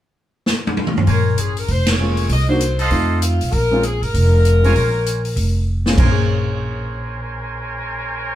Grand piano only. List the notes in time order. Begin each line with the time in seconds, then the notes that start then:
1.99 G#3 A#3 C#4 F4
2.49 A#3 D4 D#4 F#4
2.91 A3 C4 D#4 F4
3.71 G#3 C4 C#4 F4
4.63 G#3 C4 C#4 F4
5.86 A#2 G#3 C4 C#4 F4
5.92 A#3
5.99 C5
6.05 C#4
6.11 G#4